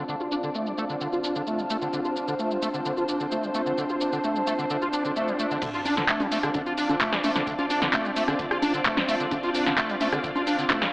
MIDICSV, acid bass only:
0, 0, Header, 1, 2, 480
1, 0, Start_track
1, 0, Key_signature, -1, "minor"
1, 0, Tempo, 461538
1, 88, Time_signature, 4, 2, 24, 8
1, 11366, End_track
2, 0, Start_track
2, 0, Title_t, "Acid bass"
2, 0, Program_c, 0, 38
2, 89, Note_on_c, 0, 50, 93
2, 156, Note_off_c, 0, 50, 0
2, 210, Note_on_c, 0, 65, 71
2, 275, Note_off_c, 0, 65, 0
2, 329, Note_on_c, 0, 62, 73
2, 429, Note_off_c, 0, 62, 0
2, 450, Note_on_c, 0, 50, 95
2, 515, Note_off_c, 0, 50, 0
2, 569, Note_on_c, 0, 57, 77
2, 691, Note_on_c, 0, 55, 71
2, 706, Note_off_c, 0, 57, 0
2, 756, Note_off_c, 0, 55, 0
2, 808, Note_on_c, 0, 57, 97
2, 875, Note_off_c, 0, 57, 0
2, 930, Note_on_c, 0, 50, 90
2, 996, Note_off_c, 0, 50, 0
2, 1049, Note_on_c, 0, 50, 95
2, 1116, Note_off_c, 0, 50, 0
2, 1170, Note_on_c, 0, 65, 72
2, 1235, Note_off_c, 0, 65, 0
2, 1289, Note_on_c, 0, 62, 75
2, 1389, Note_off_c, 0, 62, 0
2, 1410, Note_on_c, 0, 50, 98
2, 1475, Note_off_c, 0, 50, 0
2, 1528, Note_on_c, 0, 57, 79
2, 1650, Note_on_c, 0, 55, 74
2, 1666, Note_off_c, 0, 57, 0
2, 1715, Note_off_c, 0, 55, 0
2, 1769, Note_on_c, 0, 57, 97
2, 1836, Note_off_c, 0, 57, 0
2, 1890, Note_on_c, 0, 50, 97
2, 1955, Note_off_c, 0, 50, 0
2, 2008, Note_on_c, 0, 50, 94
2, 2076, Note_off_c, 0, 50, 0
2, 2130, Note_on_c, 0, 65, 71
2, 2195, Note_off_c, 0, 65, 0
2, 2247, Note_on_c, 0, 62, 75
2, 2348, Note_off_c, 0, 62, 0
2, 2369, Note_on_c, 0, 50, 95
2, 2435, Note_off_c, 0, 50, 0
2, 2488, Note_on_c, 0, 57, 81
2, 2610, Note_on_c, 0, 55, 72
2, 2625, Note_off_c, 0, 57, 0
2, 2675, Note_off_c, 0, 55, 0
2, 2728, Note_on_c, 0, 57, 98
2, 2795, Note_off_c, 0, 57, 0
2, 2850, Note_on_c, 0, 50, 93
2, 2915, Note_off_c, 0, 50, 0
2, 2968, Note_on_c, 0, 50, 98
2, 3035, Note_off_c, 0, 50, 0
2, 3090, Note_on_c, 0, 65, 72
2, 3155, Note_off_c, 0, 65, 0
2, 3208, Note_on_c, 0, 62, 71
2, 3309, Note_off_c, 0, 62, 0
2, 3330, Note_on_c, 0, 50, 95
2, 3395, Note_off_c, 0, 50, 0
2, 3448, Note_on_c, 0, 57, 80
2, 3570, Note_on_c, 0, 55, 77
2, 3585, Note_off_c, 0, 57, 0
2, 3635, Note_off_c, 0, 55, 0
2, 3687, Note_on_c, 0, 57, 96
2, 3755, Note_off_c, 0, 57, 0
2, 3809, Note_on_c, 0, 50, 95
2, 3875, Note_off_c, 0, 50, 0
2, 3928, Note_on_c, 0, 50, 94
2, 3995, Note_off_c, 0, 50, 0
2, 4050, Note_on_c, 0, 65, 73
2, 4115, Note_off_c, 0, 65, 0
2, 4168, Note_on_c, 0, 62, 72
2, 4269, Note_off_c, 0, 62, 0
2, 4289, Note_on_c, 0, 50, 97
2, 4355, Note_off_c, 0, 50, 0
2, 4408, Note_on_c, 0, 57, 80
2, 4529, Note_on_c, 0, 55, 70
2, 4545, Note_off_c, 0, 57, 0
2, 4595, Note_off_c, 0, 55, 0
2, 4648, Note_on_c, 0, 57, 98
2, 4715, Note_off_c, 0, 57, 0
2, 4770, Note_on_c, 0, 50, 95
2, 4835, Note_off_c, 0, 50, 0
2, 4889, Note_on_c, 0, 50, 100
2, 4956, Note_off_c, 0, 50, 0
2, 5011, Note_on_c, 0, 65, 73
2, 5076, Note_off_c, 0, 65, 0
2, 5129, Note_on_c, 0, 62, 72
2, 5229, Note_off_c, 0, 62, 0
2, 5250, Note_on_c, 0, 50, 97
2, 5315, Note_off_c, 0, 50, 0
2, 5369, Note_on_c, 0, 57, 80
2, 5491, Note_on_c, 0, 55, 78
2, 5507, Note_off_c, 0, 57, 0
2, 5556, Note_off_c, 0, 55, 0
2, 5609, Note_on_c, 0, 57, 97
2, 5676, Note_off_c, 0, 57, 0
2, 5730, Note_on_c, 0, 50, 96
2, 5796, Note_off_c, 0, 50, 0
2, 5849, Note_on_c, 0, 50, 102
2, 5916, Note_off_c, 0, 50, 0
2, 5971, Note_on_c, 0, 65, 75
2, 6036, Note_off_c, 0, 65, 0
2, 6089, Note_on_c, 0, 62, 74
2, 6189, Note_off_c, 0, 62, 0
2, 6211, Note_on_c, 0, 50, 101
2, 6276, Note_off_c, 0, 50, 0
2, 6329, Note_on_c, 0, 57, 85
2, 6450, Note_on_c, 0, 55, 73
2, 6466, Note_off_c, 0, 57, 0
2, 6515, Note_off_c, 0, 55, 0
2, 6569, Note_on_c, 0, 57, 107
2, 6636, Note_off_c, 0, 57, 0
2, 6691, Note_on_c, 0, 50, 100
2, 6756, Note_off_c, 0, 50, 0
2, 6810, Note_on_c, 0, 50, 104
2, 6876, Note_off_c, 0, 50, 0
2, 6931, Note_on_c, 0, 65, 76
2, 6996, Note_off_c, 0, 65, 0
2, 7049, Note_on_c, 0, 62, 76
2, 7149, Note_off_c, 0, 62, 0
2, 7171, Note_on_c, 0, 50, 102
2, 7236, Note_off_c, 0, 50, 0
2, 7289, Note_on_c, 0, 57, 84
2, 7411, Note_on_c, 0, 55, 81
2, 7427, Note_off_c, 0, 57, 0
2, 7476, Note_off_c, 0, 55, 0
2, 7529, Note_on_c, 0, 57, 101
2, 7596, Note_off_c, 0, 57, 0
2, 7650, Note_on_c, 0, 50, 100
2, 7715, Note_off_c, 0, 50, 0
2, 7768, Note_on_c, 0, 50, 100
2, 7835, Note_off_c, 0, 50, 0
2, 7890, Note_on_c, 0, 65, 76
2, 7955, Note_off_c, 0, 65, 0
2, 8009, Note_on_c, 0, 62, 77
2, 8109, Note_off_c, 0, 62, 0
2, 8130, Note_on_c, 0, 50, 100
2, 8195, Note_off_c, 0, 50, 0
2, 8248, Note_on_c, 0, 57, 85
2, 8370, Note_on_c, 0, 55, 75
2, 8386, Note_off_c, 0, 57, 0
2, 8435, Note_off_c, 0, 55, 0
2, 8488, Note_on_c, 0, 57, 105
2, 8555, Note_off_c, 0, 57, 0
2, 8609, Note_on_c, 0, 50, 103
2, 8675, Note_off_c, 0, 50, 0
2, 8728, Note_on_c, 0, 50, 106
2, 8795, Note_off_c, 0, 50, 0
2, 8850, Note_on_c, 0, 65, 79
2, 8915, Note_off_c, 0, 65, 0
2, 8968, Note_on_c, 0, 62, 77
2, 9069, Note_off_c, 0, 62, 0
2, 9090, Note_on_c, 0, 50, 103
2, 9155, Note_off_c, 0, 50, 0
2, 9208, Note_on_c, 0, 57, 85
2, 9330, Note_on_c, 0, 55, 81
2, 9345, Note_off_c, 0, 57, 0
2, 9395, Note_off_c, 0, 55, 0
2, 9448, Note_on_c, 0, 57, 106
2, 9515, Note_off_c, 0, 57, 0
2, 9570, Note_on_c, 0, 50, 99
2, 9635, Note_off_c, 0, 50, 0
2, 9688, Note_on_c, 0, 50, 99
2, 9755, Note_off_c, 0, 50, 0
2, 9810, Note_on_c, 0, 65, 75
2, 9875, Note_off_c, 0, 65, 0
2, 9928, Note_on_c, 0, 62, 76
2, 10029, Note_off_c, 0, 62, 0
2, 10050, Note_on_c, 0, 50, 105
2, 10115, Note_off_c, 0, 50, 0
2, 10168, Note_on_c, 0, 57, 85
2, 10290, Note_on_c, 0, 55, 73
2, 10305, Note_off_c, 0, 57, 0
2, 10355, Note_off_c, 0, 55, 0
2, 10408, Note_on_c, 0, 57, 103
2, 10475, Note_off_c, 0, 57, 0
2, 10529, Note_on_c, 0, 50, 104
2, 10595, Note_off_c, 0, 50, 0
2, 10647, Note_on_c, 0, 50, 104
2, 10715, Note_off_c, 0, 50, 0
2, 10769, Note_on_c, 0, 65, 79
2, 10835, Note_off_c, 0, 65, 0
2, 10887, Note_on_c, 0, 62, 78
2, 10988, Note_off_c, 0, 62, 0
2, 11009, Note_on_c, 0, 50, 101
2, 11075, Note_off_c, 0, 50, 0
2, 11127, Note_on_c, 0, 57, 85
2, 11250, Note_on_c, 0, 55, 83
2, 11265, Note_off_c, 0, 57, 0
2, 11315, Note_off_c, 0, 55, 0
2, 11366, End_track
0, 0, End_of_file